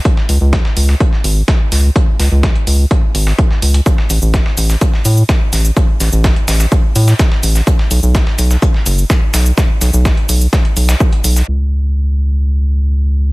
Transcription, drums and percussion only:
0.05 kick loud
0.05 closed hi-hat medium
0.17 snare soft
0.29 closed hi-hat medium
0.29 open hi-hat loud
0.53 kick loud
0.53 snare loud
0.53 closed hi-hat medium
0.65 snare medium
0.77 closed hi-hat medium
0.77 open hi-hat loud
0.89 snare soft
1.00 kick loud
1.00 closed hi-hat medium
1.13 snare soft
1.24 closed hi-hat medium
1.24 open hi-hat loud
1.48 kick loud
1.48 snare loud
1.48 closed hi-hat medium
1.72 snare soft
1.72 closed hi-hat medium
1.72 open hi-hat loud
1.96 kick loud
1.96 closed hi-hat medium
2.20 snare soft
2.20 closed hi-hat medium
2.20 open hi-hat loud
2.43 kick loud
2.43 snare loud
2.43 closed hi-hat medium
2.55 closed hi-hat soft
2.67 closed hi-hat medium
2.67 open hi-hat loud
2.91 kick loud
2.91 closed hi-hat medium
3.15 closed hi-hat medium
3.15 open hi-hat loud
3.27 snare medium
3.39 kick loud
3.39 closed hi-hat medium
3.51 snare soft
3.62 closed hi-hat medium
3.62 open hi-hat loud
3.74 closed hi-hat medium
3.86 kick loud
3.86 closed hi-hat medium
3.86 shaker soft
3.98 snare soft
4.10 closed hi-hat medium
4.10 open hi-hat loud
4.10 shaker medium
4.22 shaker soft
4.34 kick loud
4.34 snare loud
4.34 closed hi-hat medium
4.34 shaker soft
4.46 snare medium
4.57 closed hi-hat medium
4.57 open hi-hat loud
4.57 shaker medium
4.70 snare soft
4.70 shaker soft
4.81 kick loud
4.81 closed hi-hat medium
4.81 shaker soft
4.93 snare soft
5.05 closed hi-hat medium
5.05 open hi-hat loud
5.05 shaker medium
5.17 shaker soft
5.29 kick loud
5.29 snare loud
5.29 closed hi-hat medium
5.29 shaker soft
5.53 snare soft
5.53 closed hi-hat medium
5.53 open hi-hat loud
5.53 shaker medium
5.65 shaker soft
5.77 kick loud
5.77 closed hi-hat medium
5.77 shaker soft
6.00 snare soft
6.00 closed hi-hat medium
6.00 open hi-hat loud
6.00 shaker medium
6.12 shaker soft
6.24 kick loud
6.24 snare loud
6.24 closed hi-hat medium
6.24 shaker soft
6.36 closed hi-hat soft
6.48 snare loud
6.48 closed hi-hat medium
6.48 open hi-hat loud
6.48 shaker medium
6.60 snare soft
6.60 shaker soft
6.72 kick loud
6.72 closed hi-hat medium
6.72 shaker soft
6.96 closed hi-hat medium
6.96 open hi-hat loud
6.96 shaker medium
7.08 snare medium
7.08 shaker soft
7.19 kick loud
7.19 snare loud
7.19 closed hi-hat medium
7.19 shaker soft
7.32 snare medium
7.43 closed hi-hat medium
7.43 open hi-hat loud
7.43 shaker medium
7.55 snare soft
7.55 shaker soft
7.67 kick loud
7.67 closed hi-hat medium
7.67 shaker soft
7.79 snare soft
7.91 closed hi-hat medium
7.91 open hi-hat loud
7.91 shaker medium
8.03 shaker soft
8.15 kick loud
8.15 snare loud
8.15 closed hi-hat medium
8.15 shaker soft
8.27 snare medium
8.39 closed hi-hat medium
8.39 open hi-hat medium
8.39 shaker medium
8.51 snare soft
8.51 shaker soft
8.62 kick loud
8.62 closed hi-hat medium
8.62 shaker soft
8.74 snare soft
8.86 closed hi-hat medium
8.86 open hi-hat loud
8.86 shaker medium
8.98 shaker soft
9.10 kick loud
9.10 snare loud
9.10 closed hi-hat medium
9.10 shaker soft
9.34 snare loud
9.34 closed hi-hat medium
9.34 open hi-hat loud
9.34 shaker medium
9.46 shaker soft
9.58 kick loud
9.58 snare loud
9.58 closed hi-hat medium
9.58 shaker soft
9.81 snare soft
9.81 closed hi-hat medium
9.81 open hi-hat loud
9.81 shaker medium
9.94 shaker soft
10.05 kick loud
10.05 snare loud
10.05 closed hi-hat medium
10.05 shaker soft
10.17 closed hi-hat soft
10.29 closed hi-hat medium
10.29 open hi-hat loud
10.29 shaker medium
10.41 shaker soft
10.53 kick loud
10.53 snare loud
10.53 closed hi-hat medium
10.53 shaker soft
10.65 closed hi-hat soft
10.77 closed hi-hat medium
10.77 open hi-hat loud
10.77 shaker medium
10.89 snare loud
10.89 closed hi-hat medium
10.89 shaker soft
11.00 kick loud
11.00 closed hi-hat soft
11.00 shaker soft
11.13 closed hi-hat medium
11.24 closed hi-hat medium
11.24 open hi-hat loud
11.24 shaker medium
11.36 snare soft
11.36 shaker soft
11.48 crash medium

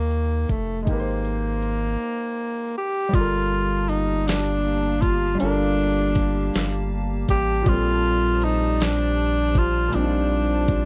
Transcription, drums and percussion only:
0.11 closed hi-hat soft
0.49 kick medium
0.49 closed hi-hat soft
0.87 kick loud
0.87 closed hi-hat medium
1.25 closed hi-hat soft
1.62 closed hi-hat soft
3.14 kick loud
3.14 closed hi-hat medium
3.89 closed hi-hat medium
4.28 snare loud
4.28 closed hi-hat medium
5.02 kick medium
5.02 closed hi-hat medium
5.40 closed hi-hat medium
6.15 kick medium
6.15 closed hi-hat medium
6.54 snare loud
6.54 closed hi-hat medium
7.29 kick medium
7.29 closed hi-hat medium
7.66 kick loud
7.66 closed hi-hat medium
8.42 closed hi-hat medium
8.80 snare loud
8.80 closed hi-hat medium
9.55 kick loud
9.55 closed hi-hat medium
9.93 closed hi-hat medium
10.68 kick medium
10.68 closed hi-hat medium

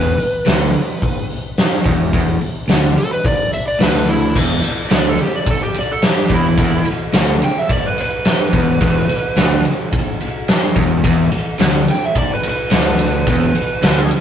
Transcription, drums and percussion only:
0.19 open hi-hat soft
0.46 snare medium
0.46 open hi-hat medium
0.74 open hi-hat soft
1.02 kick medium
1.02 open hi-hat medium
1.30 open hi-hat soft
1.57 snare loud
1.57 open hi-hat medium
1.72 snare soft
1.86 kick loud
1.86 open hi-hat soft
2.13 kick medium
2.13 open hi-hat medium
2.41 open hi-hat soft
2.69 snare loud
2.69 open hi-hat medium
2.97 open hi-hat soft
3.25 kick loud
3.25 open hi-hat medium
3.52 open hi-hat soft
3.80 snare loud
3.80 open hi-hat medium
3.95 snare soft
4.08 open hi-hat medium
4.36 kick loud
4.36 crash loud
4.64 ride medium
4.91 snare loud
4.91 ride medium
5.19 ride medium
5.46 kick loud
5.46 ride medium
5.74 ride medium
6.02 snare loud
6.02 ride medium
6.30 kick medium
6.30 ride medium
6.57 kick loud
6.57 ride medium
6.85 ride medium
7.13 snare loud
7.13 ride medium
7.42 ride medium
7.69 kick loud
7.69 ride medium
7.98 ride medium
8.25 snare loud
8.25 ride medium
8.53 kick loud
8.53 ride medium
8.81 kick loud
8.81 ride medium
9.09 ride medium
9.37 snare loud
9.37 ride medium
9.65 ride medium
9.92 kick medium
9.92 ride medium
10.21 ride medium
10.48 snare loud
10.48 ride medium
10.76 kick loud
10.76 ride medium
11.04 kick loud
11.04 ride medium
11.32 ride medium
11.60 snare loud
11.60 ride medium
11.88 ride medium
12.15 kick loud
12.15 ride medium
12.43 ride medium
12.71 snare loud
12.71 ride loud
12.99 ride medium
13.27 kick loud
13.27 ride medium
13.55 ride medium
13.83 snare loud
13.83 ride medium
14.11 ride medium

